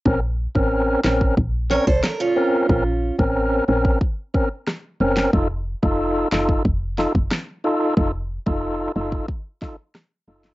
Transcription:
<<
  \new Staff \with { instrumentName = "Steel-string acoustic guitar" } { \time 4/4 \key bes \minor \tempo 4 = 91 r2 r8 <bes' des''>16 <a' c''>16 bes'16 <des' f'>8.~ | <des' f'>8. r2. r16 | r1 | r1 | }
  \new Staff \with { instrumentName = "Tonewheel organ" } { \time 4/4 \key bes \minor <c' des' bes'>16 r8 <c' des' bes'>8. <c' des' bes'>8 r8 <c' des' bes'>16 r8. <c' des' bes'>8 | <c' des' bes'>16 r8 <c' des' bes'>8. <c' des' bes'>8 r8 <c' des' bes'>16 r8. <c' des' bes'>8 | <ees' f' a'>16 r8 <ees' f' a'>8. <ees' f' a'>8 r8 <ees' f' a'>16 r8. <ees' f' a'>8 | <ees' f' a'>16 r8 <ees' f' a'>8. <ees' f' a'>8 r8 <ees' f' a'>16 r8. <ees' f' a'>8 | }
  \new Staff \with { instrumentName = "FM bass" } { \clef bass \time 4/4 \key bes \minor bes,,8. a,,8. bes,,8 bes,,8. c,16 r4 | bes,,8. a,,8. bes,,8 r4. ges,,8 | f,,8. f,,8. ges,,8 f,,8. ges,,16 r4 | f,,8. f,,8. ges,,8 r4. ges,,8 | }
  \new DrumStaff \with { instrumentName = "Drums" } \drummode { \time 4/4 bd8. bd16 r8 <hc sn>16 bd16 bd8 sn16 bd16 <hc ss sn>4 | bd8. bd16 r8. bd16 bd8 bd8 <ss sn>8. <hc sn>16 | bd8. bd16 r8 <hc sn>16 bd16 bd8 sn16 bd16 <hc ss sn>4 | bd8. bd16 r8. bd16 bd8 <bd sn>8 <ss sn>8. <hc sn>16 | }
>>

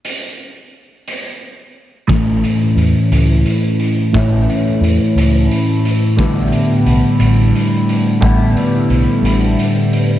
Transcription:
<<
  \new Staff \with { instrumentName = "Clean electric guitar" } { \clef bass \time 6/8 \key a \mixolydian \tempo 4. = 59 r2. | <a, e a cis' e'>2. | <a, e a cis' e'>2. | <a, d g b e'>2. |
<a, d g b e'>2. | }
  \new Staff \with { instrumentName = "Picked electric bass" } { \clef bass \time 6/8 \key a \mixolydian r2. | a,,8 r8 e,16 r16 cis,8 r4 | a,,8 r8 e,16 r16 cis,8 r4 | a,,8 r8 b,,16 r16 a,,8 r4 |
a,,8 r8 b,,16 r16 a,,8 r4 | }
  \new DrumStaff \with { instrumentName = "Drums" } \drummode { \time 6/8 hh4. hh4. | <hh bd>8 hh8 hh8 hh8 hh8 hh8 | <hh bd>8 hh8 hh8 hh8 hh8 hh8 | <hh bd>8 hh8 hh8 hh8 hh8 hh8 |
<hh bd>8 hh8 hh8 hh8 hh8 hh8 | }
>>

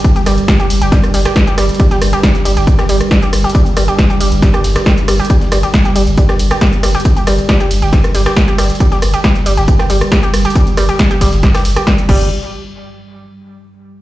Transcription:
<<
  \new Staff \with { instrumentName = "Synth arpeggio sound" } { \clef bass \time 4/4 \key c \minor \tempo 4 = 137 r16 g'16 g16 r16 g16 g'16 r16 g'16 g16 r16 g16 g'16 r16 g'16 g16 r16 | g16 g'16 r16 g'16 g16 r16 g16 g'16 r16 g'16 g16 r16 g16 g'16 r16 g'16 | g16 r16 g16 g'16 r16 g'16 g16 r16 g16 g'16 r16 g16 g16 r16 g16 g'16 | g16 r16 g16 g'16 r16 g'16 g16 r16 g16 g'16 r16 g'16 g16 r16 g16 g'16 |
r16 g'16 g16 r16 g16 g'16 r16 g'16 g16 r16 g16 g'16 r16 g'16 g16 r16 | g16 g'16 r16 g'16 g16 r16 g16 g'16 r16 g'16 g16 r16 g16 g'16 r16 g'16 | g16 r16 g16 g'16 r16 g'16 g16 r16 g16 g'16 r16 g'16 g16 r16 g8 | r1 | }
  \new Staff \with { instrumentName = "Ambient pad" } { \clef bass \time 4/4 \key c \minor <g, g>1~ | <g, g>1~ | <g, g>1~ | <g, g>1~ |
<g, g>1~ | <g, g>1~ | <g, g>1 | r1 | }
  \new Staff \with { instrumentName = "Sub bass" } { \clef bass \time 4/4 \key c \minor r16 g,,16 g,,16 r8 g,,16 g,,16 g,,16 r16 g,,16 g,,16 r8 g,,16 g,,16 r16 | r16 g,,16 g,,16 r8 g,,16 g,,16 g,,16 r16 g,,16 g,,16 r8 g,,16 g,,16 r16 | r16 g,,16 g,,16 r8 g,,16 g,,16 g,,16 r16 g,,16 g,,16 r8 g,,16 g,,16 r16 | r16 g,,16 g,,16 r8 g,,16 g,,16 g,,16 r16 g,,16 g,,16 r8 g,,16 g,,16 r16 |
r16 g,,16 g,,16 r8 g,,16 g,,16 g,,16 r16 g,,16 g,,16 r8 g,,16 g,,16 r16 | r16 g,,16 g,,16 r8 g,,16 g,,16 g,,16 r16 g,,16 g,,16 r8 g,,16 g,,16 r16 | r16 g,,16 g,,16 r8 g,,16 g,,16 g,,16 r16 g,,16 g,,16 r8 g,,16 g,,8 | r1 | }
  \new DrumStaff \with { instrumentName = "Drums" } \drummode { \time 4/4 <hh bd>16 hh16 <hh hho cymr ss>16 hh16 <hh bd sn>16 hh16 <hh hho cymr>16 hh16 <hh bd sn>16 <hh ss>16 <hho cymr>16 <hh ss sn>16 <hh bd sn>16 hh16 <hh hho cymr ss>16 hh32 hh32 | <hh bd>16 <hh sn>16 <hh hho cymr ss>16 hh16 <hh bd sn>16 <hh sn>16 <hh hho cymr>16 hh16 <hh bd>16 <hh ss sn>16 <hh hho cymr>16 <hh ss>16 <hh bd sn>16 hh16 <hh hho cymr ss>16 hh32 hh32 | <hh bd>16 hh16 <hh hho cymr ss>16 hh16 <hh bd sn>16 hh16 <hh hho cymr>16 hh16 <hh bd sn>16 <hh ss>16 <hho cymr>16 <hh ss sn>16 <hh bd sn>16 hh16 <hh hho cymr ss>16 hh32 hh32 | <hh bd>16 <hh sn>16 <hh hho cymr ss>16 hh16 <hh bd sn>16 <hh sn>16 <hh hho cymr>16 hh16 <hh bd>16 <hh ss sn>16 <hh hho cymr>16 <hh ss>16 <hh bd sn>16 hh16 <hh hho cymr ss>16 hh32 hh32 |
<hh bd>16 hh16 <hh hho cymr ss>16 hh16 <hh bd sn>16 hh16 <hh hho cymr>16 hh16 <hh bd sn>16 <hh ss>16 <hho cymr>16 <hh ss sn>16 <hh bd sn>16 hh16 <hh hho cymr ss>16 hh32 hh32 | <hh bd>16 <hh sn>16 <hh hho cymr ss>16 hh16 <hh bd sn>16 <hh sn>16 <hh hho cymr>16 hh16 <hh bd>16 <hh ss sn>16 <hh hho cymr>16 <hh ss>16 <hh bd sn>16 hh16 <hh hho cymr ss>16 hh32 hh32 | <hh bd>16 hh16 <hh hho cymr ss>16 hh16 <hh bd sn>16 hh16 <hh hho bd cymr sn>16 <hh sn>16 <hh bd sn>16 <hh hho ss sn>16 <hho cymr sn>16 <hh ss>16 <hh bd sn>16 hh16 <cymc bd>8 | r4 r4 r4 r4 | }
>>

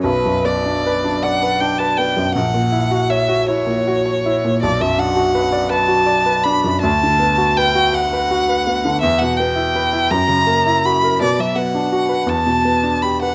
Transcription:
<<
  \new Staff \with { instrumentName = "Violin" } { \time 6/8 \key b \minor \tempo 4. = 54 b'8 d''4 fis''8 g''16 a''16 g''8 | fis''4 e''8 cis''4. | d''16 e''16 fis''4 a''4 b''8 | a''4 g''8 fis''4. |
e''16 fis''16 g''4 ais''4 b''8 | d''16 e''16 fis''4 a''4 b''16 fis''16 | }
  \new Staff \with { instrumentName = "Grand piano" } { \time 6/8 \key b \minor b,,16 fis,16 b16 d'16 b'16 d'16 d''16 b'16 d'16 b'16 b16 fis,16 | ais,,16 ais,16 e'16 fis'16 cis''16 fis'16 e'16 ais,16 fis'16 cis''16 e'16 ais,16 | b,,16 fis,16 d'16 fis'16 b'16 d''16 b'16 fis'16 d''16 b'16 d'16 fis,16 | d,16 d16 b16 fis'16 b'16 fis'16 fis''16 b'16 fis'16 b'16 b16 d16 |
e,16 b,16 b16 e'16 b'16 e'16 fis,16 cis16 ais16 e'16 fis'16 ais'16 | b,16 fis16 b16 d'16 fis'16 b'16 e,16 b,16 b16 d'16 g'16 b'16 | }
>>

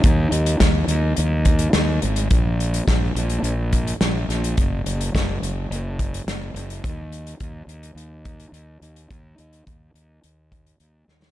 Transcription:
<<
  \new Staff \with { instrumentName = "Fingered electric bass" } { \clef bass \time 4/4 \key bes \mixolydian \tempo 4 = 106 ees,8 ees,8 ees,8 ees,8 ees,4 ees,8 aes,,8 | bes,,4 bes,,8 bes,,8 bes,,4 bes,,8 bes,,8 | ges,,8 ges,,8 ges,,8 ges,,8 ges,,4 ges,,8 ges,,8 | ees,4 ees,8 ees,8 ees,4 ees,8 ees,8 |
ees,8 ees,8 ees,8 ees,8 ees,4 ees,8 ees,8 | }
  \new DrumStaff \with { instrumentName = "Drums" } \drummode { \time 4/4 <hh bd>8 hh16 hh16 <hh bd sn>8 hh8 hh8 <hh bd>16 hh16 <hh sn>8 hh16 hh16 | <hh bd>8 hh16 hh16 <hh bd sn>8 hh16 hh16 hh8 <hh bd>16 hh16 <hh sn>8 <hh sn>16 hh16 | <hh bd>8 hh16 hh16 <hh bd sn>8 hh8 hh8 <hh bd>16 hh16 <hh sn>8 hh16 hh16 | <hh bd>8 hh16 hh16 <hh bd>8 hh16 hh16 hh8 <hh bd>16 hh16 hh8 hh16 hh16 |
<hh bd>8 hh16 hh16 <hh bd>8 hh8 hh8 <hh bd>16 hh16 hh8 sn16 sn16 | }
>>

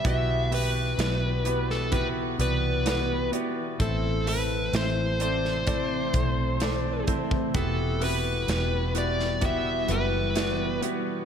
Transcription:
<<
  \new Staff \with { instrumentName = "Lead electric guitar" } { \time 4/4 \key e \minor \tempo 4 = 64 e''8 b'4~ b'16 a'16 b'8 b'4 r8 | a'8 b'8 c''8 c''2 r8 | a'8 b'4 d''8 e''8 b'4 r8 | }
  \new Staff \with { instrumentName = "Grand piano" } { \time 4/4 \key e \minor <b e' fis' g' b'>8 <b e' fis' g' b'>8 <b e' fis' g' d''>8 <b e' fis' g' b'>8 <b e' fis' g' b'>8 <b e' fis' g' d''>8 <b e' fis' g' b'>8 <b e' fis' g' d''>8 | <a c' e' a' c''>8 <a c' e' a' e''>8 <a c' e' a' c''>8 <a c' e' a' d''>8 <a c' e' a' d''>8 <a c' e' a' c''>8 <a c' e' a' d''>8 <a c' e' a' c''>8 | <b e' fis' g' b'>8 <b e' fis' g' b'>8 <b e' fis' g' b'>8 <b e' fis' g' b'>8 <b e' fis' g' b'>8 <b e' fis' g' b'>8 <b e' fis' g' d''>8 <b e' fis' g' b'>8 | }
  \new Staff \with { instrumentName = "Grand piano" } { \clef bass \time 4/4 \key e \minor b,4. r2 r8 | a,4. r2 r8 | e4. r2 r8 | }
  \new Staff \with { instrumentName = "Ambient pad" } { \time 4/4 \key e \minor << { fis''2 e'2~ | e'1 | <g fis''>1 | } \\ { <e b>1 | <a c' a'>1 | <b e'>1 | } >> }
  \new Staff \with { instrumentName = "Fingered electric bass" } { \clef bass \time 4/4 \key e \minor b,,4 b,,4. c,4 r8 | a,,4 a,,4. b,,4 r8 | e,,4 e,,4. fis,,4 r8 | }
  \new DrumStaff \with { instrumentName = "Drums" } \drummode { \time 4/4 <hho hhp bd>8 <hho hhp>8 <hho hhp sn>8 <hho hhp>16 sn16 <hho hhp bd>8 <hho hhp>8 <hho hhp sn>8 <hho hhp>8 | <hho hhp bd>8 <hho hhp>8 <hho hhp sn>8 <hho hhp>16 sn16 <hho hhp bd>8 <hho hhp bd>8 <hho hhp sn>8 <hho hhp bd>16 bd16 | <hho hhp bd>8 <hho hhp>8 <hho hhp sn>8 <hho hhp>16 sn16 <hho hhp bd>8 <hho hhp>8 <hho hhp sn>8 <hho hhp>8 | }
>>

